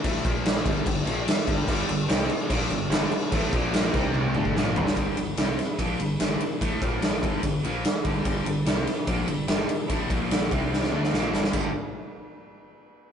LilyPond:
<<
  \new Staff \with { instrumentName = "Tonewheel organ" } { \time 4/4 \key g \minor \tempo 4 = 146 <g d' a'>8 <bes f' c''>4 <g d' a'>2~ <g d' a'>8~ | <g d' a'>1~ | <g d' a'>8 <bes f' c''>4 <c' g' d''>4 <g d' a'>4. | \key g \dorian r1 |
r1 | <g d' a'>1~ | <g d' a'>8 <bes f' c''>4 <c' g' d''>4 <g d' a'>4. | <g d' a'>8 r2. r8 | }
  \new Staff \with { instrumentName = "Distorted electric guitar" } { \clef bass \time 4/4 \key g \minor <a, e a>8 <bes, f bes>4 <g, d g>8 <g, d>8 <bes, f bes>8 r8 <g, d g>8 | <g, d g>8 <g, d>8 <c g c'>8 r8 <bes, f bes>8 <g, d>8 <g, d g>8 r8 | <a, e a>8 <bes, f bes>4 <c g c'>4 <d a d'>8 <bes, f bes>8 <g, d g>8 | \key g \dorian <g, d g>8 <g, d>8 <c g c'>8 r8 <bes, f bes>8 <g, d>8 <g, d g>8 r8 |
<a, e a>8 <bes, f bes>4 <g, d g>8 <g, d>8 <bes, f bes>8 r8 <g, d g>8 | <g, d g>8 <g, d>8 <c g c'>8 r8 <bes, f bes>8 <g, d>8 <g, d g>8 r8 | <a, e a>8 <bes, f bes>4 <c g c'>4 <d a d'>8 <bes, f bes>8 <g, d g>8 | <g, d g>8 r2. r8 | }
  \new Staff \with { instrumentName = "Distorted electric guitar" } { \clef bass \time 4/4 \key g \minor <a, e a>8 <bes, f bes>4 <g, d g>8 <g, d>8 <bes, f bes>8 r8 <g, d g>8 | <g, d g>8 <g, d>8 <c g c'>8 r8 <bes, f bes>8 <g, d>8 <g, d g>8 r8 | <a, e a>8 <bes, f bes>4 <c g c'>4 <d a d'>8 <bes, f bes>8 <g, d g>8 | \key g \dorian r1 |
r1 | r1 | r1 | r1 | }
  \new Staff \with { instrumentName = "Overdriven electric guitar" } { \clef bass \time 4/4 \key g \minor r1 | <g, d g>8 <g, d>8 <c g c'>8 r8 <bes, f bes>8 <g, d>8 <g, d g>8 r8 | <a, e a>8 <bes, f bes>4 <c g c'>4 <d a d'>8 <bes, f bes>8 <g, d g>8 | \key g \dorian <g, d g>8 <g, d>8 <c g c'>8 r8 <bes, f bes>8 <g, d>8 <g, d g>8 r8 |
<a, e a>8 <bes, f bes>4 <g, d g>8 <g, d>8 <bes, f bes>8 r8 <g, d g>8 | <g, d g>8 <g, d>8 <c g c'>8 r8 <bes, f bes>8 <g, d>8 <g, d g>8 r8 | <a, e a>8 <bes, f bes>4 <c g c'>4 <d a d'>8 <bes, f bes>8 <g, d g>8 | <g, d g>8 r2. r8 | }
  \new Staff \with { instrumentName = "Fingered electric bass" } { \clef bass \time 4/4 \key g \minor a,,8 bes,,4 g,,8 g,,8 bes,,8 r8 g,,8 | g,,8 g,,8 c,8 r8 bes,,8 g,,8 g,,8 r8 | a,,8 bes,,4 c,4 d,8 bes,,8 g,,8 | \key g \dorian g,,8 g,,8 c,8 r8 bes,,8 g,,8 g,,8 r8 |
a,,8 bes,,4 g,,8 g,,8 bes,,8 r8 g,,8 | g,,8 g,,8 c,8 r8 bes,,8 g,,8 g,,8 r8 | a,,8 bes,,4 c,4 d,8 bes,,8 g,,8 | g,,8 r2. r8 | }
  \new DrumStaff \with { instrumentName = "Drums" } \drummode { \time 4/4 <cymc bd>8 <cymc bd>8 <cymc sn>16 sn16 <cymc bd>8 <cymc bd>8 cymc8 <cymc sn>8 <cymc bd>8 | <cymc bd>8 cymc8 <cymc sn>16 sn16 cymc8 <cymc bd>8 cymc8 <cymc sn>8 cymc8 | <cymc bd>8 <cymc bd>8 <cymc sn>8 <cymc bd sn>8 tommh8 toml16 bd16 sn8 tomfh16 sn16 | <bd cymr>8 cymr8 <cymr sn>8 <cymr sn>8 <bd cymr>8 cymr8 <cymr sn>8 cymr8 |
<bd cymr>8 <bd cymr>8 <cymr sn>16 sn16 <bd cymr>8 <bd cymr>8 cymr8 <cymr sn>8 <bd cymr>8 | <bd cymr>8 cymr8 <cymr sn>8 <cymr sn>8 <bd cymr>8 cymr8 <cymr sn>8 cymr8 | <bd cymr>8 <bd cymr>8 <cymr sn>8 <bd cymr>8 sn16 sn8 sn16 sn8 sn16 sn16 | <cymc bd>4 r4 r4 r4 | }
>>